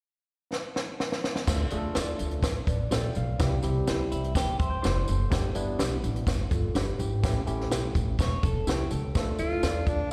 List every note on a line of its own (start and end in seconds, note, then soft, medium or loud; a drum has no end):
0.53 snare soft
0.76 snare medium
1.00 snare medium
1.12 snare medium
1.24 snare medium
1.36 snare medium
1.47 1.66 D2 loud
1.47 1.65 A3 medium
1.47 1.65 D4 medium
1.47 1.65 F4 medium
1.47 1.65 A4 medium
1.47 kick loud
1.47 snare loud
1.47 crash medium
1.47 tambourine medium
1.70 1.90 D2 medium
1.70 2.39 A3 medium
1.70 2.40 D4 medium
1.70 2.40 F4 medium
1.70 1.78 G#4 medium
1.70 closed hi-hat medium
1.70 tambourine medium
1.78 2.43 A4 medium
1.95 2.14 E2 medium
1.95 2.10 F4 medium
1.95 2.10 A4 medium
1.95 2.11 D5 loud
1.95 snare loud
1.95 closed hi-hat medium
1.95 tambourine medium
2.19 2.43 D2 medium
2.19 closed hi-hat medium
2.19 tambourine soft
2.31 closed hi-hat soft
2.43 2.61 A1 medium
2.43 kick medium
2.43 snare loud
2.43 closed hi-hat loud
2.43 tambourine medium
2.67 2.86 A1 medium
2.67 2.91 B4 soft
2.67 2.91 D5 medium
2.67 kick medium
2.67 closed hi-hat medium
2.67 tambourine soft
2.91 3.11 A#1 medium
2.91 3.06 F4 medium
2.91 3.06 A4 medium
2.91 3.07 D5 medium
2.91 3.15 E5 medium
2.91 3.15 G5 medium
2.91 snare loud
2.91 closed hi-hat medium
2.91 tambourine medium
3.15 3.35 B1 medium
3.15 3.62 D5 soft
3.15 3.62 F5 medium
3.15 closed hi-hat medium
3.15 tambourine medium
3.39 3.58 C2 loud
3.39 3.56 G3 medium
3.39 3.57 C4 medium
3.39 3.57 E4 medium
3.39 3.57 G4 medium
3.39 kick loud
3.39 snare loud
3.39 closed hi-hat medium
3.39 tambourine medium
3.62 3.83 C2 medium
3.62 4.31 G3 medium
3.62 4.31 C4 medium
3.62 4.31 E4 medium
3.62 4.31 G4 medium
3.62 closed hi-hat medium
3.62 tambourine medium
3.87 4.07 D2 medium
3.87 4.02 E4 medium
3.87 4.02 G4 medium
3.87 4.03 C5 medium
3.87 snare loud
3.87 closed hi-hat medium
3.87 tambourine loud
4.12 4.31 C2 medium
4.12 4.35 E4 medium
4.12 closed hi-hat medium
4.12 tambourine soft
4.24 closed hi-hat medium
4.35 4.54 G1 medium
4.35 4.59 G4 medium
4.35 kick medium
4.35 snare loud
4.35 closed hi-hat loud
4.35 tambourine medium
4.48 closed hi-hat soft
4.59 4.78 G1 medium
4.59 5.28 C5 medium
4.59 4.71 E5 medium
4.59 kick medium
4.59 closed hi-hat medium
4.59 tambourine soft
4.70 4.82 G5 medium
4.82 5.03 F1 medium
4.82 4.98 E4 medium
4.82 4.98 G4 medium
4.82 5.06 B4 medium
4.82 4.98 C5 medium
4.82 5.06 D5 medium
4.82 5.28 C6 medium
4.82 snare loud
4.82 closed hi-hat loud
4.82 tambourine medium
5.07 5.27 F#1 medium
5.07 5.53 A4 soft
5.07 5.53 C5 medium
5.07 closed hi-hat medium
5.07 tambourine medium
5.30 5.50 G1 medium
5.30 5.48 G3 medium
5.30 5.48 B3 medium
5.30 5.48 D4 medium
5.30 5.49 G4 medium
5.30 kick medium
5.30 snare loud
5.30 closed hi-hat medium
5.30 tambourine medium
5.54 5.74 G1 medium
5.54 6.23 G3 medium
5.54 6.23 B3 medium
5.54 6.23 D4 medium
5.54 6.23 E4 medium
5.54 closed hi-hat medium
5.54 tambourine medium
5.79 5.98 B1 medium
5.79 5.94 D4 medium
5.79 5.94 G4 loud
5.79 5.94 B4 medium
5.79 snare loud
5.79 closed hi-hat medium
5.79 tambourine medium
6.03 6.22 A1 medium
6.03 closed hi-hat medium
6.03 tambourine medium
6.16 closed hi-hat medium
6.27 6.45 G1 medium
6.27 kick medium
6.27 snare loud
6.27 closed hi-hat medium
6.27 tambourine loud
6.50 6.70 G1 medium
6.50 6.75 F4 medium
6.50 6.74 A4 medium
6.50 kick medium
6.50 closed hi-hat medium
6.50 tambourine soft
6.75 6.94 G1 medium
6.75 6.89 D4 medium
6.75 6.90 G4 medium
6.75 6.98 G4 medium
6.75 6.98 B4 medium
6.75 6.90 B4 medium
6.75 snare loud
6.75 closed hi-hat medium
6.75 tambourine medium
6.99 7.18 G#1 medium
6.99 7.22 E4 soft
6.99 7.22 G4 medium
6.99 closed hi-hat medium
6.99 tambourine medium
7.23 7.42 A1 medium
7.23 7.40 A3 medium
7.23 7.40 C#4 medium
7.23 7.41 E4 medium
7.23 7.40 G4 medium
7.23 kick loud
7.23 snare loud
7.23 closed hi-hat loud
7.23 tambourine medium
7.46 7.71 A1 medium
7.46 8.14 A3 medium
7.46 8.15 C#4 medium
7.46 8.15 E4 medium
7.46 8.15 G4 medium
7.46 closed hi-hat medium
7.46 tambourine medium
7.60 snare soft
7.71 7.90 B1 medium
7.71 7.85 E4 medium
7.71 7.86 G4 medium
7.71 7.86 C#5 medium
7.71 snare loud
7.71 closed hi-hat medium
7.71 tambourine loud
7.95 8.14 A1 medium
7.95 kick medium
7.95 closed hi-hat medium
7.95 tambourine soft
8.19 8.37 E1 medium
8.19 8.42 C#5 medium
8.19 kick medium
8.19 snare loud
8.19 closed hi-hat medium
8.19 tambourine medium
8.43 8.62 E1 medium
8.43 8.67 A4 medium
8.43 kick loud
8.43 closed hi-hat medium
8.43 tambourine soft
8.67 8.85 C2 medium
8.67 8.81 E4 medium
8.67 9.13 G4 medium
8.67 8.82 G4 medium
8.67 8.90 C#5 medium
8.67 8.82 C#5 medium
8.67 8.90 E5 medium
8.67 snare loud
8.67 closed hi-hat medium
8.67 tambourine medium
8.91 9.09 C#2 medium
8.91 9.15 A4 medium
8.91 closed hi-hat medium
8.91 tambourine medium
9.15 9.33 D2 loud
9.15 9.83 A3 medium
9.15 9.83 D4 medium
9.15 9.83 F4 medium
9.15 9.83 A4 medium
9.15 kick loud
9.15 snare medium
9.15 closed hi-hat medium
9.15 tambourine medium
9.39 9.57 D2 medium
9.39 9.89 F4 loud
9.39 closed hi-hat medium
9.39 tambourine medium
9.63 9.81 E2 medium
9.63 9.77 F4 medium
9.63 9.77 A4 medium
9.63 9.78 D5 loud
9.63 snare loud
9.63 closed hi-hat medium
9.63 tambourine medium
9.87 10.11 D2 medium
9.87 10.11 D4 medium
9.87 kick medium
9.87 closed hi-hat medium
9.87 tambourine soft